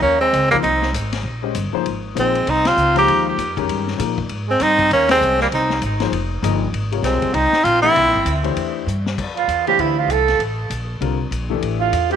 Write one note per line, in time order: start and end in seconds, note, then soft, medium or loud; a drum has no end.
0.01 0.32 D#2 medium
0.01 0.19 A#3 medium
0.01 0.20 C#4 medium
0.20 0.49 G#3 medium
0.20 0.49 C4 medium
0.33 0.63 C#2 medium
0.33 hi-hat pedal medium
0.33 ride medium
0.50 0.62 F3 medium
0.50 0.56 G3 medium
0.50 0.57 A#3 medium
0.50 0.62 A#3 medium
0.50 0.63 D#4 medium
0.50 0.63 G#4 medium
0.50 0.63 C5 medium
0.50 kick soft
0.50 ride soft
0.63 0.92 C2 medium
0.63 0.92 C4 medium
0.63 0.92 D#4 medium
0.63 ride medium
0.82 snare medium
0.93 1.23 G#1 medium
0.93 hi-hat pedal medium
0.93 ride medium
1.13 snare medium
1.13 ride medium
1.23 1.54 A#1 medium
1.42 1.54 G#3 medium
1.42 1.54 C#4 medium
1.42 1.54 G4 medium
1.42 1.54 C5 medium
1.42 1.55 D#5 medium
1.55 1.72 G1 medium
1.55 hi-hat pedal medium
1.55 ride medium
1.73 1.84 F3 medium
1.73 1.84 A#3 medium
1.73 1.85 D#4 medium
1.73 1.85 G#4 medium
1.73 1.85 C5 medium
1.73 muted upright bass stroke soft
1.85 2.15 G#1 medium
1.85 ride medium
2.15 2.46 A#1 medium
2.15 2.32 F3 medium
2.15 2.51 G#3 medium
2.15 2.32 A#3 medium
2.15 2.33 D#4 medium
2.15 2.33 G#4 medium
2.15 2.33 C5 medium
2.15 hi-hat pedal medium
2.15 ride medium
2.19 2.51 C4 medium
2.35 ride soft
2.47 2.76 C2 medium
2.47 2.66 C4 medium
2.47 2.69 D#4 loud
2.47 ride medium
2.65 2.96 C4 medium
2.65 2.97 F4 loud
2.65 snare medium
2.65 ride medium
2.76 3.06 C#2 medium
2.76 hi-hat pedal medium
2.95 3.35 F3 medium
2.95 3.36 G#3 medium
2.95 3.36 A#3 medium
2.95 3.36 D#4 medium
2.95 3.25 D#4 medium
2.95 3.25 G4 loud
2.95 3.36 C5 medium
2.95 snare soft
2.95 ride soft
3.08 3.37 D#2 medium
3.08 ride medium
3.38 3.68 F2 medium
3.38 hi-hat pedal medium
3.38 ride medium
3.57 3.97 D#3 medium
3.57 3.97 G#3 medium
3.57 3.97 C#4 medium
3.57 3.98 G4 medium
3.57 3.98 A#4 medium
3.57 kick medium
3.57 ride soft
3.68 3.98 G2 medium
3.68 ride medium
3.87 snare soft
3.98 4.29 A#2 medium
3.98 4.15 F3 medium
3.98 4.15 A#3 medium
3.98 4.16 D#4 medium
3.98 4.16 G#4 medium
3.98 4.16 A#4 medium
3.98 hi-hat pedal medium
3.98 ride medium
4.18 kick medium
4.29 4.59 G#2 medium
4.29 ride medium
4.48 4.63 G#3 medium
4.48 4.64 C4 medium
4.60 4.90 G2 medium
4.60 4.91 C4 medium
4.60 4.92 D#4 loud
4.60 snare soft
4.60 hi-hat pedal medium
4.60 ride medium
4.79 kick medium
4.79 ride soft
4.90 5.20 D#2 medium
4.90 5.09 A#3 medium
4.90 5.09 C#4 medium
4.90 ride medium
5.09 5.39 G#3 medium
5.09 5.38 C4 loud
5.09 snare medium
5.09 ride medium
5.21 5.51 C2 medium
5.21 hi-hat pedal medium
5.39 5.47 G3 medium
5.39 5.47 A#3 medium
5.39 snare soft
5.52 5.81 C2 medium
5.52 5.81 C4 medium
5.52 5.81 D#4 medium
5.52 ride medium
5.70 snare medium
5.82 6.11 G#1 medium
5.82 hi-hat pedal medium
5.82 ride medium
6.00 6.11 F3 medium
6.00 6.11 A#3 medium
6.00 6.11 D#4 medium
6.00 6.12 G#4 medium
6.00 6.12 C5 medium
6.00 snare medium
6.00 ride soft
6.12 6.42 F1 medium
6.12 ride medium
6.42 6.72 G1 loud
6.42 6.59 F3 medium
6.42 6.59 A#3 medium
6.42 6.60 D#4 medium
6.42 6.60 G#4 medium
6.42 6.60 D#5 medium
6.42 hi-hat pedal medium
6.42 ride medium
6.73 7.02 G#1 medium
6.73 ride medium
6.92 7.32 C3 medium
6.92 7.32 G3 medium
6.92 7.32 F4 medium
6.92 7.32 A#4 medium
6.92 7.33 C#5 medium
6.92 ride soft
7.02 7.20 B1 medium
7.02 7.34 G#3 medium
7.02 7.36 C4 medium
7.02 snare soft
7.02 hi-hat pedal medium
7.02 ride medium
7.22 kick medium
7.22 ride soft
7.33 7.51 C2 medium
7.33 7.63 C4 medium
7.33 7.65 D#4 loud
7.33 ride medium
7.53 snare medium
7.63 7.94 A#1 medium
7.63 7.82 C4 medium
7.63 7.81 F4 loud
7.63 hi-hat pedal medium
7.63 ride medium
7.82 7.94 E3 medium
7.82 7.94 A3 medium
7.82 8.40 C4 medium
7.82 7.94 D4 medium
7.82 8.40 E4 loud
7.82 7.94 G4 medium
7.82 7.95 D5 medium
7.95 8.05 C2 medium
7.95 ride medium
8.05 8.14 A#1 medium
8.15 8.25 G1 medium
8.25 8.55 D2 medium
8.25 hi-hat pedal medium
8.25 ride medium
8.43 8.84 E3 medium
8.43 8.84 A3 medium
8.43 8.84 D4 medium
8.43 8.85 G4 medium
8.43 8.85 C5 medium
8.43 ride soft
8.56 8.85 E2 medium
8.56 ride medium
8.87 9.16 G2 medium
8.87 hi-hat pedal medium
9.06 snare medium
9.18 9.47 F2 medium
9.18 kick medium
9.18 crash medium
9.37 9.65 F4 medium
9.37 ride soft
9.48 9.77 E2 medium
9.48 hi-hat pedal soft
9.48 ride medium
9.67 10.07 E3 medium
9.67 10.07 A3 medium
9.67 10.08 D4 medium
9.67 9.82 G4 medium
9.67 10.08 G4 medium
9.67 10.08 C5 medium
9.67 ride soft
9.78 10.07 D2 medium
9.78 10.00 E4 medium
9.78 ride medium
9.98 10.13 F4 medium
10.08 10.38 C2 medium
10.08 10.41 A4 medium
10.08 hi-hat pedal soft
10.08 ride medium
10.28 snare soft
10.28 ride soft
10.39 10.69 A1 medium
10.39 ride medium
10.70 11.00 A#1 medium
10.70 hi-hat pedal medium
10.70 ride medium
11.01 11.30 C2 medium
11.01 11.17 D3 medium
11.01 11.17 G3 medium
11.01 11.18 C4 medium
11.01 11.18 F4 medium
11.01 11.18 A#4 medium
11.01 ride medium
11.31 11.61 A#1 medium
11.31 hi-hat pedal soft
11.31 ride medium
11.50 11.90 E3 medium
11.50 11.90 A3 medium
11.50 11.90 D4 medium
11.50 11.90 G4 medium
11.50 11.91 A4 medium
11.61 11.91 A1 medium
11.61 ride medium
11.80 12.09 F4 medium
11.92 12.16 E2 medium
11.92 hi-hat pedal soft
11.92 ride medium
12.10 12.16 G3 medium
12.10 12.16 C4 medium
12.10 12.16 F4 medium
12.10 12.16 G4 medium
12.10 12.16 A#4 medium
12.10 12.16 E5 medium
12.10 ride soft